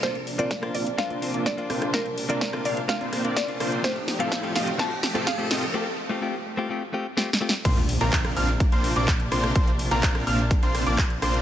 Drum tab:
CC |------------------------------------------------|------------------------------------------------|------------------------------------------------|------------------------------------------------|
HH |x--x--o--x--x--x--o--x--x--x--o--x--x--x--o--x--|x--x--o--x--x--x--o--x--x--x--o--x--x--x--o--x--|x--x--o--x--x--x--o--x--x--x--o--x--x--x--o--x--|------------------------------------------------|
CP |------------------------------------------------|------------------------------------------------|------------------------------------------------|------------------------------------------------|
SD |o-----------o--r--------o-----------o-----r--r--|o-----------o--r--------o-----r-----o-----r-----|o-----o-----o-----o-----o-----o-----o-----o-----|------------------------------------o---o---o---|
BD |o-----------o-----------o-----------o-----------|o-----------o-----------o-----------o-----------|o-----------o-----------o-----------o-----------|------------------------------------------------|

CC |x-----------------------------------------------|------------------------------------------------|
HH |x--x--o--x--x--x--o--x--x--x--o--x--x--x--o--x--|x--x--o--x--x--x--o--x--x--x--o--x--x--x--o--x--|
CP |------------x-----------------------x-----------|------------x-----------------------x-----------|
SD |---------------r--------------------------r--r--|---------------r--------------r-----------r-----|
BD |o-----------o-----------o-----------o-----------|o-----------o-----------o-----------o-----------|